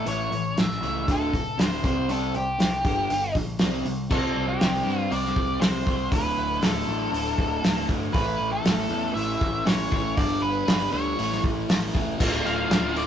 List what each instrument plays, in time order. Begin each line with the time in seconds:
0.05 picked electric bass A1, overdriven electric guitar A2 E3 A3, lead electric guitar C#5, open hi-hat
0.31 picked electric bass A1, overdriven electric guitar A2 E3, open hi-hat
0.56 picked electric bass A1, overdriven electric guitar A2 E3, lead electric guitar E5, snare, open hi-hat
0.71 snare
0.82 picked electric bass C#2, overdriven electric guitar A2 E3 A3, open hi-hat
1.07 picked electric bass D1, overdriven electric guitar D2 A2 D3, lead electric guitar A4, kick, open hi-hat
1.32 picked electric bass F1, overdriven electric guitar D2 A2, kick, open hi-hat
1.58 picked electric bass D1, overdriven electric guitar D2 A2 D3, lead electric guitar C5, snare, open hi-hat
1.84 picked electric bass C2, overdriven electric guitar C3 G3 C4, lead electric guitar C5, kick, open hi-hat
2.08 picked electric bass C2, overdriven electric guitar C3 G3 C4, lead electric guitar A4, open hi-hat
2.34 picked electric bass C2, overdriven electric guitar C3 G3, lead electric guitar G4, open hi-hat
2.58 picked electric bass C2, overdriven electric guitar C3 G3, snare, open hi-hat
2.84 picked electric bass G1, overdriven electric guitar G2 D3 G3, kick, open hi-hat
3.09 picked electric bass G1, overdriven electric guitar G2 D3, open hi-hat
3.34 picked electric bass A#1, overdriven electric guitar G2 D3, kick, open hi-hat
3.59 picked electric bass C2, overdriven electric guitar C3 G3 C4, snare, open hi-hat
3.85 picked electric bass C2, overdriven electric guitar C3 G3, open hi-hat
4.09 picked electric bass C2, overdriven electric guitar C3 G3 C4, lead electric guitar A4, kick, crash
4.36 picked electric bass C2
4.48 lead electric guitar G4
4.61 picked electric bass C2, overdriven electric guitar C3 G3 C4, snare, open hi-hat
4.85 picked electric bass G2, overdriven electric guitar C3 G3 C4
4.98 lead electric guitar F4
5.10 picked electric bass C2, overdriven electric guitar C3 G3 C4, lead electric guitar D5, open hi-hat
5.25 snare
5.36 picked electric bass C2, kick
5.61 picked electric bass C2, overdriven electric guitar C3 G3 C4, lead electric guitar C5, snare, open hi-hat
5.85 picked electric bass C2, overdriven electric guitar C3 G3 C4, kick
6.11 picked electric bass D1, overdriven electric guitar D2 A2 D3, lead electric guitar B4, kick, open hi-hat
6.37 picked electric bass D1
6.60 picked electric bass D1, overdriven electric guitar D2 A2 D3, lead electric guitar A4, snare, open hi-hat
6.87 picked electric bass A1, overdriven electric guitar D2 A2 D3
7.12 picked electric bass D1, overdriven electric guitar D2 A2 D3, open hi-hat
7.38 picked electric bass D1, kick
7.62 picked electric bass D1, overdriven electric guitar D2 A2 D3, snare, open hi-hat
7.88 picked electric bass G1, overdriven electric guitar D2 A2 D3, kick
8.12 picked electric bass A1, overdriven electric guitar A2 E3 A3, lead electric guitar B4, kick, open hi-hat
8.39 picked electric bass A1
8.52 lead electric guitar A4
8.62 picked electric bass A1, overdriven electric guitar A2 E3 A3, snare, open hi-hat
8.89 picked electric bass E2, overdriven electric guitar A2 E3 A3
9.13 picked electric bass A1, overdriven electric guitar A2 E3 A3, lead electric guitar E5, open hi-hat
9.41 picked electric bass A1, kick
9.65 picked electric bass A1, overdriven electric guitar A2 E3 A3, lead electric guitar C#5, snare, open hi-hat
9.91 picked electric bass A1, overdriven electric guitar A2 E3 A3, kick
10.16 picked electric bass G1, overdriven electric guitar G2 D3 G3, lead electric guitar D5, kick, open hi-hat
10.42 picked electric bass G1, lead electric guitar B4
10.66 picked electric bass G1, overdriven electric guitar G2 D3 G3, snare, open hi-hat
10.92 picked electric bass D2, overdriven electric guitar G2 D3 G3, lead electric guitar C#5
11.17 picked electric bass A1, overdriven electric guitar A2 E3 A3, open hi-hat
11.32 snare
11.44 picked electric bass A1, kick
11.68 picked electric bass A1, overdriven electric guitar A2 E3 A3, snare, open hi-hat
11.93 picked electric bass E1, overdriven electric guitar A2 E3 A3, kick
12.18 picked electric bass D1, overdriven electric guitar D2 A2 D3 A3 F4, tonewheel organ A3 D4 F4 D5, kick, crash
12.43 picked electric bass D1, overdriven electric guitar D3 A3 F4, lead electric guitar F5, crash
12.69 picked electric bass D1, overdriven electric guitar A2 D3 A3 F4, snare, crash
12.95 overdriven electric guitar D2 A2 D3 A3 F4, lead electric guitar D5, crash